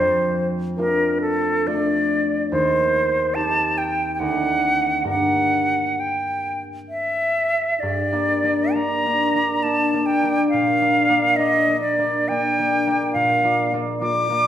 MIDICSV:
0, 0, Header, 1, 3, 480
1, 0, Start_track
1, 0, Key_signature, -2, "minor"
1, 0, Tempo, 878477
1, 912, Tempo, 843882
1, 1392, Time_signature, 3, 2, 24, 8
1, 2352, Tempo, 900901
1, 3792, Tempo, 923077
1, 4752, Tempo, 873362
1, 6192, Tempo, 914634
1, 6672, Tempo, 865801
1, 7884, End_track
2, 0, Start_track
2, 0, Title_t, "Flute"
2, 0, Program_c, 0, 73
2, 0, Note_on_c, 0, 72, 66
2, 264, Note_off_c, 0, 72, 0
2, 423, Note_on_c, 0, 70, 59
2, 651, Note_off_c, 0, 70, 0
2, 662, Note_on_c, 0, 69, 57
2, 913, Note_on_c, 0, 74, 64
2, 922, Note_off_c, 0, 69, 0
2, 1387, Note_off_c, 0, 74, 0
2, 1390, Note_on_c, 0, 72, 66
2, 1866, Note_on_c, 0, 81, 69
2, 1875, Note_off_c, 0, 72, 0
2, 2111, Note_on_c, 0, 79, 55
2, 2120, Note_off_c, 0, 81, 0
2, 2315, Note_off_c, 0, 79, 0
2, 2321, Note_on_c, 0, 79, 41
2, 2348, Note_on_c, 0, 78, 63
2, 2356, Note_off_c, 0, 79, 0
2, 2822, Note_off_c, 0, 78, 0
2, 2825, Note_on_c, 0, 78, 68
2, 3310, Note_on_c, 0, 79, 51
2, 3318, Note_off_c, 0, 78, 0
2, 3646, Note_off_c, 0, 79, 0
2, 3784, Note_on_c, 0, 76, 63
2, 4259, Note_on_c, 0, 74, 55
2, 4266, Note_off_c, 0, 76, 0
2, 4747, Note_on_c, 0, 82, 64
2, 4755, Note_off_c, 0, 74, 0
2, 5235, Note_on_c, 0, 81, 65
2, 5243, Note_off_c, 0, 82, 0
2, 5472, Note_on_c, 0, 79, 61
2, 5480, Note_off_c, 0, 81, 0
2, 5706, Note_off_c, 0, 79, 0
2, 5709, Note_on_c, 0, 77, 68
2, 6188, Note_on_c, 0, 75, 67
2, 6196, Note_off_c, 0, 77, 0
2, 6425, Note_off_c, 0, 75, 0
2, 6428, Note_on_c, 0, 74, 60
2, 6671, Note_on_c, 0, 79, 73
2, 6679, Note_off_c, 0, 74, 0
2, 7138, Note_off_c, 0, 79, 0
2, 7141, Note_on_c, 0, 77, 69
2, 7466, Note_off_c, 0, 77, 0
2, 7625, Note_on_c, 0, 86, 77
2, 7884, Note_off_c, 0, 86, 0
2, 7884, End_track
3, 0, Start_track
3, 0, Title_t, "Harp"
3, 0, Program_c, 1, 46
3, 0, Note_on_c, 1, 41, 47
3, 0, Note_on_c, 1, 57, 35
3, 0, Note_on_c, 1, 62, 36
3, 0, Note_on_c, 1, 65, 39
3, 419, Note_off_c, 1, 57, 0
3, 419, Note_off_c, 1, 62, 0
3, 424, Note_off_c, 1, 65, 0
3, 424, Note_on_c, 1, 57, 34
3, 427, Note_on_c, 1, 62, 33
3, 431, Note_on_c, 1, 65, 40
3, 907, Note_off_c, 1, 57, 0
3, 909, Note_off_c, 1, 62, 0
3, 909, Note_off_c, 1, 65, 0
3, 912, Note_on_c, 1, 57, 36
3, 916, Note_on_c, 1, 65, 37
3, 917, Note_on_c, 1, 62, 36
3, 1395, Note_on_c, 1, 39, 47
3, 1411, Note_off_c, 1, 41, 0
3, 1411, Note_off_c, 1, 57, 0
3, 1412, Note_off_c, 1, 62, 0
3, 1412, Note_off_c, 1, 65, 0
3, 1868, Note_on_c, 1, 60, 32
3, 1872, Note_on_c, 1, 63, 31
3, 1874, Note_on_c, 1, 67, 34
3, 2345, Note_off_c, 1, 60, 0
3, 2349, Note_on_c, 1, 38, 40
3, 2350, Note_off_c, 1, 63, 0
3, 2352, Note_on_c, 1, 60, 28
3, 2356, Note_on_c, 1, 63, 31
3, 2359, Note_on_c, 1, 69, 29
3, 2373, Note_off_c, 1, 39, 0
3, 2375, Note_off_c, 1, 67, 0
3, 2799, Note_on_c, 1, 43, 41
3, 2805, Note_on_c, 1, 58, 30
3, 2810, Note_on_c, 1, 62, 32
3, 2816, Note_on_c, 1, 70, 28
3, 2843, Note_off_c, 1, 38, 0
3, 2844, Note_off_c, 1, 60, 0
3, 2846, Note_off_c, 1, 63, 0
3, 2847, Note_off_c, 1, 69, 0
3, 4265, Note_off_c, 1, 43, 0
3, 4271, Note_on_c, 1, 43, 44
3, 4419, Note_off_c, 1, 62, 0
3, 4420, Note_off_c, 1, 58, 0
3, 4425, Note_on_c, 1, 58, 33
3, 4427, Note_on_c, 1, 62, 33
3, 4431, Note_on_c, 1, 74, 36
3, 4582, Note_off_c, 1, 58, 0
3, 4586, Note_off_c, 1, 62, 0
3, 4586, Note_off_c, 1, 74, 0
3, 4589, Note_on_c, 1, 58, 33
3, 4592, Note_on_c, 1, 62, 33
3, 4593, Note_on_c, 1, 74, 35
3, 4746, Note_off_c, 1, 62, 0
3, 4747, Note_off_c, 1, 58, 0
3, 4750, Note_off_c, 1, 74, 0
3, 4752, Note_on_c, 1, 58, 34
3, 4754, Note_on_c, 1, 62, 34
3, 4756, Note_on_c, 1, 74, 36
3, 4874, Note_off_c, 1, 70, 0
3, 4915, Note_off_c, 1, 62, 0
3, 4916, Note_off_c, 1, 58, 0
3, 4920, Note_off_c, 1, 74, 0
3, 4921, Note_on_c, 1, 58, 31
3, 4923, Note_on_c, 1, 62, 30
3, 4927, Note_on_c, 1, 74, 32
3, 5072, Note_off_c, 1, 58, 0
3, 5074, Note_off_c, 1, 62, 0
3, 5077, Note_on_c, 1, 58, 30
3, 5078, Note_off_c, 1, 74, 0
3, 5081, Note_on_c, 1, 62, 32
3, 5085, Note_on_c, 1, 74, 35
3, 5235, Note_off_c, 1, 58, 0
3, 5237, Note_off_c, 1, 62, 0
3, 5238, Note_off_c, 1, 74, 0
3, 5240, Note_on_c, 1, 58, 32
3, 5245, Note_on_c, 1, 62, 33
3, 5245, Note_on_c, 1, 74, 37
3, 5395, Note_off_c, 1, 58, 0
3, 5399, Note_off_c, 1, 74, 0
3, 5401, Note_off_c, 1, 62, 0
3, 5402, Note_on_c, 1, 58, 30
3, 5406, Note_on_c, 1, 62, 29
3, 5407, Note_on_c, 1, 74, 32
3, 5561, Note_off_c, 1, 58, 0
3, 5561, Note_off_c, 1, 62, 0
3, 5565, Note_off_c, 1, 74, 0
3, 5566, Note_on_c, 1, 58, 32
3, 5570, Note_on_c, 1, 62, 34
3, 5572, Note_on_c, 1, 74, 34
3, 5730, Note_on_c, 1, 46, 46
3, 5738, Note_off_c, 1, 43, 0
3, 5881, Note_off_c, 1, 58, 0
3, 5881, Note_off_c, 1, 62, 0
3, 5884, Note_off_c, 1, 74, 0
3, 5886, Note_on_c, 1, 58, 36
3, 5889, Note_on_c, 1, 62, 37
3, 5891, Note_on_c, 1, 74, 36
3, 6032, Note_off_c, 1, 58, 0
3, 6034, Note_off_c, 1, 62, 0
3, 6037, Note_off_c, 1, 74, 0
3, 6037, Note_on_c, 1, 58, 33
3, 6041, Note_on_c, 1, 62, 34
3, 6043, Note_on_c, 1, 74, 36
3, 6194, Note_off_c, 1, 58, 0
3, 6196, Note_off_c, 1, 62, 0
3, 6200, Note_off_c, 1, 74, 0
3, 6200, Note_on_c, 1, 58, 33
3, 6203, Note_on_c, 1, 62, 36
3, 6206, Note_on_c, 1, 74, 40
3, 6351, Note_off_c, 1, 58, 0
3, 6353, Note_off_c, 1, 74, 0
3, 6354, Note_off_c, 1, 62, 0
3, 6357, Note_on_c, 1, 58, 33
3, 6359, Note_on_c, 1, 62, 33
3, 6360, Note_on_c, 1, 74, 35
3, 6511, Note_off_c, 1, 58, 0
3, 6512, Note_off_c, 1, 62, 0
3, 6514, Note_off_c, 1, 74, 0
3, 6515, Note_on_c, 1, 58, 34
3, 6520, Note_on_c, 1, 62, 33
3, 6520, Note_on_c, 1, 74, 34
3, 6673, Note_off_c, 1, 58, 0
3, 6675, Note_off_c, 1, 74, 0
3, 6676, Note_off_c, 1, 62, 0
3, 6680, Note_on_c, 1, 58, 38
3, 6681, Note_on_c, 1, 62, 38
3, 6684, Note_on_c, 1, 74, 39
3, 6833, Note_off_c, 1, 58, 0
3, 6835, Note_off_c, 1, 62, 0
3, 6836, Note_off_c, 1, 74, 0
3, 6839, Note_on_c, 1, 58, 33
3, 6842, Note_on_c, 1, 62, 31
3, 6843, Note_on_c, 1, 74, 34
3, 6987, Note_off_c, 1, 58, 0
3, 6992, Note_off_c, 1, 62, 0
3, 6994, Note_on_c, 1, 58, 36
3, 6997, Note_off_c, 1, 74, 0
3, 6998, Note_on_c, 1, 62, 36
3, 7003, Note_on_c, 1, 74, 39
3, 7143, Note_off_c, 1, 46, 0
3, 7150, Note_on_c, 1, 46, 49
3, 7305, Note_off_c, 1, 58, 0
3, 7309, Note_off_c, 1, 74, 0
3, 7310, Note_on_c, 1, 58, 39
3, 7316, Note_on_c, 1, 65, 38
3, 7316, Note_on_c, 1, 74, 44
3, 7468, Note_off_c, 1, 58, 0
3, 7469, Note_off_c, 1, 65, 0
3, 7471, Note_off_c, 1, 74, 0
3, 7473, Note_on_c, 1, 58, 40
3, 7477, Note_on_c, 1, 65, 37
3, 7478, Note_on_c, 1, 74, 44
3, 7622, Note_off_c, 1, 58, 0
3, 7625, Note_off_c, 1, 65, 0
3, 7628, Note_off_c, 1, 74, 0
3, 7629, Note_on_c, 1, 58, 38
3, 7632, Note_on_c, 1, 65, 38
3, 7635, Note_on_c, 1, 74, 44
3, 7785, Note_off_c, 1, 58, 0
3, 7787, Note_off_c, 1, 65, 0
3, 7789, Note_on_c, 1, 58, 37
3, 7790, Note_off_c, 1, 74, 0
3, 7795, Note_on_c, 1, 65, 37
3, 7797, Note_on_c, 1, 74, 38
3, 7884, Note_off_c, 1, 46, 0
3, 7884, Note_off_c, 1, 58, 0
3, 7884, Note_off_c, 1, 62, 0
3, 7884, Note_off_c, 1, 65, 0
3, 7884, Note_off_c, 1, 74, 0
3, 7884, End_track
0, 0, End_of_file